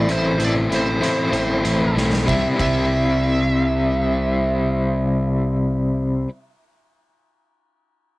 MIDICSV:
0, 0, Header, 1, 5, 480
1, 0, Start_track
1, 0, Key_signature, 0, "major"
1, 0, Tempo, 628272
1, 1740, Time_signature, 4, 2, 24, 8
1, 6254, End_track
2, 0, Start_track
2, 0, Title_t, "Lead electric guitar"
2, 0, Program_c, 0, 29
2, 91, Note_on_c, 0, 72, 68
2, 322, Note_off_c, 0, 72, 0
2, 340, Note_on_c, 0, 74, 73
2, 400, Note_off_c, 0, 74, 0
2, 568, Note_on_c, 0, 72, 63
2, 1484, Note_off_c, 0, 72, 0
2, 1740, Note_on_c, 0, 76, 65
2, 1874, Note_off_c, 0, 76, 0
2, 1992, Note_on_c, 0, 76, 65
2, 4246, Note_off_c, 0, 76, 0
2, 6254, End_track
3, 0, Start_track
3, 0, Title_t, "Overdriven electric guitar"
3, 0, Program_c, 1, 29
3, 60, Note_on_c, 1, 45, 65
3, 68, Note_on_c, 1, 52, 69
3, 68, Note_on_c, 1, 57, 59
3, 69, Note_on_c, 1, 60, 70
3, 79, Note_on_c, 1, 64, 67
3, 281, Note_off_c, 1, 45, 0
3, 283, Note_off_c, 1, 52, 0
3, 287, Note_off_c, 1, 57, 0
3, 290, Note_off_c, 1, 60, 0
3, 290, Note_on_c, 1, 45, 79
3, 291, Note_off_c, 1, 64, 0
3, 292, Note_on_c, 1, 52, 76
3, 296, Note_on_c, 1, 57, 78
3, 299, Note_on_c, 1, 60, 83
3, 300, Note_on_c, 1, 64, 80
3, 516, Note_off_c, 1, 45, 0
3, 521, Note_off_c, 1, 52, 0
3, 524, Note_off_c, 1, 57, 0
3, 525, Note_on_c, 1, 45, 69
3, 526, Note_off_c, 1, 64, 0
3, 527, Note_off_c, 1, 60, 0
3, 530, Note_on_c, 1, 52, 69
3, 534, Note_on_c, 1, 57, 69
3, 535, Note_on_c, 1, 64, 74
3, 536, Note_on_c, 1, 60, 76
3, 759, Note_off_c, 1, 52, 0
3, 760, Note_off_c, 1, 45, 0
3, 761, Note_off_c, 1, 57, 0
3, 768, Note_off_c, 1, 60, 0
3, 769, Note_on_c, 1, 45, 73
3, 769, Note_on_c, 1, 52, 72
3, 770, Note_off_c, 1, 64, 0
3, 771, Note_on_c, 1, 57, 71
3, 777, Note_on_c, 1, 60, 78
3, 779, Note_on_c, 1, 64, 79
3, 998, Note_off_c, 1, 45, 0
3, 1003, Note_off_c, 1, 52, 0
3, 1003, Note_off_c, 1, 57, 0
3, 1007, Note_off_c, 1, 64, 0
3, 1007, Note_on_c, 1, 45, 63
3, 1008, Note_off_c, 1, 60, 0
3, 1012, Note_on_c, 1, 52, 66
3, 1012, Note_on_c, 1, 57, 71
3, 1016, Note_on_c, 1, 64, 72
3, 1018, Note_on_c, 1, 60, 75
3, 1236, Note_off_c, 1, 45, 0
3, 1242, Note_off_c, 1, 52, 0
3, 1245, Note_off_c, 1, 57, 0
3, 1245, Note_on_c, 1, 45, 63
3, 1248, Note_off_c, 1, 60, 0
3, 1248, Note_off_c, 1, 64, 0
3, 1251, Note_on_c, 1, 52, 69
3, 1254, Note_on_c, 1, 57, 73
3, 1257, Note_on_c, 1, 60, 76
3, 1257, Note_on_c, 1, 64, 71
3, 1473, Note_off_c, 1, 45, 0
3, 1477, Note_off_c, 1, 52, 0
3, 1482, Note_on_c, 1, 45, 64
3, 1483, Note_off_c, 1, 57, 0
3, 1486, Note_off_c, 1, 60, 0
3, 1486, Note_off_c, 1, 64, 0
3, 1486, Note_on_c, 1, 52, 61
3, 1492, Note_on_c, 1, 57, 70
3, 1495, Note_on_c, 1, 64, 66
3, 1496, Note_on_c, 1, 60, 64
3, 1717, Note_off_c, 1, 45, 0
3, 1717, Note_off_c, 1, 52, 0
3, 1720, Note_on_c, 1, 48, 71
3, 1722, Note_off_c, 1, 57, 0
3, 1723, Note_off_c, 1, 60, 0
3, 1723, Note_off_c, 1, 64, 0
3, 1730, Note_on_c, 1, 55, 69
3, 1741, Note_on_c, 1, 60, 73
3, 1752, Note_on_c, 1, 64, 81
3, 1954, Note_off_c, 1, 48, 0
3, 1957, Note_on_c, 1, 48, 68
3, 1968, Note_off_c, 1, 55, 0
3, 1971, Note_on_c, 1, 55, 66
3, 1975, Note_off_c, 1, 60, 0
3, 1978, Note_on_c, 1, 60, 78
3, 1987, Note_off_c, 1, 64, 0
3, 1990, Note_on_c, 1, 64, 79
3, 4794, Note_off_c, 1, 48, 0
3, 4801, Note_off_c, 1, 55, 0
3, 4805, Note_off_c, 1, 60, 0
3, 4811, Note_off_c, 1, 64, 0
3, 6254, End_track
4, 0, Start_track
4, 0, Title_t, "Picked electric bass"
4, 0, Program_c, 2, 34
4, 0, Note_on_c, 2, 33, 75
4, 510, Note_off_c, 2, 33, 0
4, 544, Note_on_c, 2, 33, 68
4, 768, Note_off_c, 2, 33, 0
4, 1011, Note_on_c, 2, 33, 64
4, 1241, Note_off_c, 2, 33, 0
4, 1262, Note_on_c, 2, 33, 65
4, 1477, Note_off_c, 2, 33, 0
4, 1498, Note_on_c, 2, 35, 64
4, 1715, Note_off_c, 2, 35, 0
4, 1739, Note_on_c, 2, 36, 70
4, 1873, Note_off_c, 2, 36, 0
4, 1982, Note_on_c, 2, 36, 72
4, 4776, Note_off_c, 2, 36, 0
4, 6254, End_track
5, 0, Start_track
5, 0, Title_t, "Drums"
5, 67, Note_on_c, 9, 42, 48
5, 143, Note_off_c, 9, 42, 0
5, 304, Note_on_c, 9, 42, 67
5, 380, Note_off_c, 9, 42, 0
5, 550, Note_on_c, 9, 42, 55
5, 627, Note_off_c, 9, 42, 0
5, 790, Note_on_c, 9, 42, 65
5, 867, Note_off_c, 9, 42, 0
5, 1019, Note_on_c, 9, 42, 50
5, 1095, Note_off_c, 9, 42, 0
5, 1260, Note_on_c, 9, 42, 65
5, 1336, Note_off_c, 9, 42, 0
5, 1508, Note_on_c, 9, 38, 40
5, 1585, Note_off_c, 9, 38, 0
5, 1629, Note_on_c, 9, 38, 61
5, 1705, Note_off_c, 9, 38, 0
5, 1743, Note_on_c, 9, 36, 55
5, 1749, Note_on_c, 9, 51, 69
5, 1819, Note_off_c, 9, 36, 0
5, 1826, Note_off_c, 9, 51, 0
5, 1982, Note_on_c, 9, 36, 54
5, 1985, Note_on_c, 9, 51, 66
5, 2059, Note_off_c, 9, 36, 0
5, 2061, Note_off_c, 9, 51, 0
5, 6254, End_track
0, 0, End_of_file